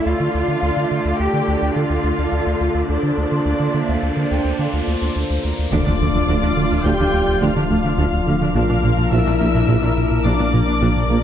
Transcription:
Already playing: A3
0.06 D2 D3 D4 F4 D5 F5, riser
0.20 D3
0.34 D2
0.48 D3
0.62 D2
0.77 D3
0.91 D3
1.05 D2
1.19 D2 G4 G5
1.34 D3
1.48 D2
1.62 D2
1.76 D3 F4 F5
1.90 D2
2.04 D2
2.19 D2
2.32 D2
2.46 D2
2.61 D2
2.75 D2
2.89 D2 A#3 D4 C5 D5
3.03 D3
3.17 D2
3.32 D3
3.45 D2 D5
3.60 D3
3.74 D3 E5
3.89 D2
4.03 D2 F5
4.17 D3
4.31 D2 G5
4.45 D2
4.59 D3 F5
4.73 D2
4.87 D2 D5
5.02 D2
5.16 D2 C5
5.30 D2
5.44 D2 A#4
5.59 D2
5.72 D1 D2 D3 F3 A3 D4 F4 D5 D6, impact
5.86 D2 D3 D4
6.00 D2 D3 A3
6.14 D2 D3 D4
6.28 D2 D3 D4
6.43 D2 D3 D4
6.57 D2 D3 A3
6.71 D2 D3 D4
6.85 D2 D3 D4 G4 G5 G6
6.99 D2 D3 D4
7.13 D2
7.28 D2
7.42 D2 D3 D4 F4 F5 F6
7.56 D3 D4
7.70 D2 D3 A3
7.84 D3 D4
7.98 D2 D3 D4
8.13 D2
8.27 D2 D3 A3
8.41 D3 D4
8.55 A#1 A#2 A#3 D4 F4 A#4 F5 F6
8.69 A#2 D4
8.83 A#1 A#2 A#3
8.97 A#2 D4
9.12 A#1 A#2 D4 E4 E5 E6
9.26 A#2 D4
9.40 A#1 A#2 A#3
9.54 A#2 D4
9.68 A#1 A#2 D4
9.82 A#2 D4
9.98 A#2
10.11 A#2
10.25 A#1 A#2 D4 D5 D6
10.39 A#2 A#3 D4
10.53 A#1 A#2 A#3
10.67 A#2 A#3 D4
10.81 A#1 A#2 D4
10.97 A#2
11.10 A#1 A#2 A#3

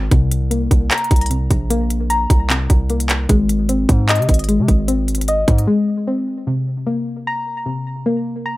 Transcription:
Already playing: G#3 C4 D#5
0.11 C2 C3, kick, closed hi-hat
0.31 closed hi-hat
0.51 A#3, closed hi-hat
0.71 C2, kick, closed hi-hat
0.91 A#5, clap, closed hi-hat
0.98 closed hi-hat
1.04 closed hi-hat
1.11 C2, kick, closed hi-hat
1.16 closed hi-hat
1.21 closed hi-hat
1.26 closed hi-hat
1.30 C3, closed hi-hat
1.51 A#1, kick, closed hi-hat
1.70 A#3, closed hi-hat
1.90 closed hi-hat
2.10 A#5, closed hi-hat
2.30 C2, kick, closed hi-hat
2.50 C3, clap, closed hi-hat
2.70 C2, kick, closed hi-hat
2.90 A#3, closed hi-hat
3.00 closed hi-hat
3.09 clap, closed hi-hat
3.29 G#1 G#3, kick, closed hi-hat
3.49 closed hi-hat
3.69 C4, closed hi-hat
3.89 G#2, kick, closed hi-hat
4.09 D#5, clap, closed hi-hat
4.15 C3, closed hi-hat
4.22 closed hi-hat
4.29 G#1, kick, closed hi-hat
4.34 closed hi-hat
4.39 closed hi-hat
4.44 closed hi-hat
4.49 G#3, closed hi-hat
4.59 C3
4.68 G#1, kick, closed hi-hat
4.88 C4, closed hi-hat
5.08 closed hi-hat
5.15 closed hi-hat
5.21 closed hi-hat
5.28 D#5, closed hi-hat
5.48 G#2, kick, closed hi-hat
5.58 closed hi-hat
5.67 G#3
6.07 C4
6.47 C3
6.87 A#3
7.27 A#5
7.66 C3
8.06 A#3
8.46 A#5

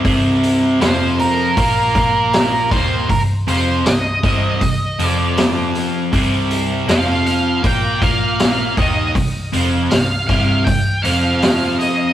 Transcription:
0.04 C1 C2 C3, kick, open hi-hat
0.43 open hi-hat
0.80 F1 F2 F3 C5, snare, open hi-hat
1.19 A#4, open hi-hat
1.57 A#1 A#2 A#3, kick, open hi-hat
1.95 A#1 A#2 A#3, kick, open hi-hat
2.33 snare, open hi-hat
2.71 D#1 D#2 D#3 C5, kick, open hi-hat
3.09 C1 C2 A#4, kick, open hi-hat
3.47 F1 F2 F3 C5, open hi-hat
3.85 C1 C2 D#5, snare, open hi-hat
4.23 C1 C2 C3, kick, open hi-hat
4.61 C1 C2, kick, open hi-hat
4.99 F1 F2 F3, open hi-hat
5.04 D5
5.37 snare, open hi-hat
5.75 open hi-hat
6.12 C1 C2 C3, kick, open hi-hat
6.51 open hi-hat
6.87 F1 F2 F3 F5, snare, open hi-hat
7.26 F5, open hi-hat
7.63 A#1 A#2 A#3 G5, kick, open hi-hat
8.01 A#1 A#2 A#3 F5, kick, open hi-hat
8.40 snare, open hi-hat
8.77 D#1 D#2 D#3 D#5, kick, open hi-hat
9.15 C1 C2, kick, open hi-hat
9.52 F1 F2 F3, open hi-hat
9.90 C1 C2 F5, snare, open hi-hat
10.28 C1 C2 C3 F5, kick, open hi-hat
10.64 C1 C2 G5, kick, open hi-hat
11.02 F1 F2 F3 F5, open hi-hat
11.42 snare, open hi-hat
11.79 D#5, open hi-hat

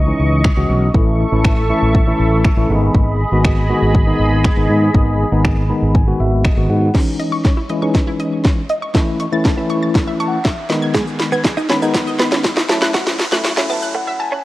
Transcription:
Already playing: C#2 E3 D#5 C#6
0.07 E3 G#3 C#4 D#4
0.20 C#2
0.44 finger snap, kick
0.57 C#2 E3 G#3 C#4 F#4
0.70 B1
0.94 A1 E3 A3 C#4 E4 A4 E5 C#6, kick
1.32 A1 E3 A3 C#4 E4
1.45 finger snap, kick
1.70 E3 A3 C#4 E4
1.82 A1
1.95 kick
2.07 E3 A3 C#4 E4
2.20 A1
2.45 finger snap, kick
2.57 A1 E3 A3 C#4 E4
2.69 G#1 D#3 G#3 B3 D#4 G#4 D#5 B5
2.95 G#1, kick
3.32 G#1 D#3 G#3 B3 F#4
3.45 finger snap, kick
3.69 D#3 G#3 B3 F#4
3.82 G#1
3.95 kick
4.07 D#3 G#3 B3 D#4
4.19 G#1
4.44 finger snap, kick
4.57 G#1 D#3 G#3 B3 D#4
4.70 G#2
4.94 G#1 D#3 G#3 B3 D#4, kick
5.32 G#1 D#3 G#3 B3 D#4
5.45 finger snap, kick
5.70 D#3 G#3 B3 D#4 B5
5.82 G#1
5.95 G#5, kick
6.07 D#3 G#3 B3 F#4
6.20 G#1 E5
6.45 D#5, finger snap, kick
6.57 G#1 D#3 G#3 B3 F#4
6.70 G#2 F#5
6.94 E3 G#3 C#4 D#4, kick, snare, closed hi-hat, crash, riser
7.20 D#5, closed hi-hat
7.32 C#6
7.45 C#4, kick, snare, closed hi-hat
7.57 E4
7.69 E3 G#3 C#4 E4 D#5, closed hi-hat
7.82 E3 G#3 C#4 D#4 C#6
7.95 kick, snare, closed hi-hat
8.07 E4
8.20 D#5, closed hi-hat
8.45 kick, snare, closed hi-hat
8.69 D#5, closed hi-hat
8.82 C#6
8.94 E3 A3 C#4 E4 A4, kick, snare, closed hi-hat
9.20 C#6, closed hi-hat
9.32 E3 A3 C#4 E4 A6
9.45 A4, kick, snare, closed hi-hat
9.57 E3 A3 C#4 E4 E5
9.69 C#6, closed hi-hat
9.82 A6
9.95 kick, snare, closed hi-hat
10.07 E5
10.20 A5 C#6, closed hi-hat
10.28 F#5
10.44 E5, kick, snare, closed hi-hat
10.69 D#3 G#3 B3 D#4 D#5 B5, snare, closed hi-hat
10.82 G#6
10.95 G#3 G#4, kick, snare, closed hi-hat, shaker
11.07 shaker
11.20 B5, muted clean electric guitar stroke, snare, closed hi-hat, shaker
11.32 B3 G#6, shaker
11.44 G#4, muted clean electric guitar stroke, kick, snare, clap, closed hi-hat, shaker
11.57 D#4 D#5, shaker
11.69 D#3 G#3 B3 C#4 D#4 B5, snare, closed hi-hat, shaker
11.82 D#3 G#3 B3 D#4 G#6, shaker
11.94 muted clean electric guitar stroke, kick, snare, closed hi-hat, shaker
12.07 D#5, shaker
12.19 B3 B5, snare, closed hi-hat, shaker
12.32 C#4, snare, shaker
12.44 kick, snare, clap, closed hi-hat, shaker
12.57 D#4, snare, shaker
12.69 F#3 A3 C#4 E4 A5, muted clean electric guitar stroke, snare, closed hi-hat, shaker
12.82 E4 F#6, snare, shaker
12.94 F#4, kick, snare, closed hi-hat, shaker
13.07 snare, shaker
13.19 A5, muted clean electric guitar stroke, snare, open hi-hat, shaker
13.32 F#3 A3 C#4 E4 F#6, snare, shaker
13.44 F#4, muted clean electric guitar stroke, snare, clap, closed hi-hat, shaker
13.57 F#3 A3 C#4 E4 E5, snare, shaker
13.69 B3 E5 A5, open hi-hat, shaker
13.82 F#6, shaker
13.95 A3 F#5
14.07 E5, muted clean electric guitar stroke
14.20 G#5 A5
14.32 C#4

